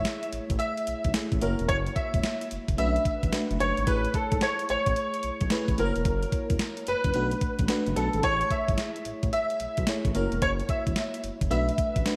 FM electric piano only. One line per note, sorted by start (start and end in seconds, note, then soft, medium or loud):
0.00 0.30 A3 medium
0.00 0.31 E4 medium
0.00 0.31 G#4 medium
0.00 0.31 C#5 medium
1.14 1.36 A3 medium
1.14 1.36 E4 medium
1.14 1.36 G#4 medium
1.14 1.37 E5 medium
1.41 2.30 A#3 medium
1.41 2.31 E4 medium
1.41 2.31 F#4 medium
1.41 2.31 C#5 medium
2.77 3.25 A3 medium
2.77 2.87 C#4 medium
2.77 3.25 F#4 medium
2.77 3.25 B4 medium
2.85 3.28 D4 medium
3.32 3.54 A3 medium
3.32 3.54 D4 medium
3.32 3.55 F#4 medium
3.32 3.55 B4 medium
3.59 3.81 A3 medium
3.59 3.82 D4 medium
3.59 3.82 F#4 medium
3.59 3.82 B4 medium
3.87 4.67 A3 medium
3.87 4.67 E4 medium
3.87 4.67 G#4 medium
3.87 4.67 C#5 medium
5.51 5.73 A3 medium
5.51 5.73 E4 medium
5.51 5.73 G#4 medium
5.51 5.73 B4 medium
5.78 6.67 A#3 medium
5.78 6.67 E4 medium
5.78 6.67 F#4 medium
5.78 5.87 C5 medium
5.85 6.71 C#5 medium
7.14 7.61 A3 medium
7.14 7.61 D4 medium
7.14 7.62 F#4 medium
7.14 7.62 B4 medium
7.69 7.91 A3 medium
7.69 7.91 D4 medium
7.69 7.91 F#4 medium
7.69 7.91 B4 medium
7.96 8.18 A3 medium
7.96 8.18 D4 medium
7.96 8.18 F#4 medium
7.96 8.19 B4 medium
8.22 9.03 A3 medium
8.22 9.03 E4 medium
8.22 9.03 G#4 medium
8.22 9.03 C#5 medium
9.87 10.09 A3 medium
9.87 10.10 E4 medium
9.87 10.10 G#4 medium
9.87 10.10 C#5 medium
10.15 11.04 A#3 medium
10.15 11.04 E4 medium
10.15 11.04 F#4 medium
10.15 11.04 C#5 medium
11.50 11.97 A3 medium
11.50 11.98 D4 medium
11.50 11.98 F#4 medium
11.50 11.98 B4 medium
12.06 12.16 A3 medium
12.06 12.16 D4 medium
12.06 12.16 F#4 medium
12.06 12.16 B4 medium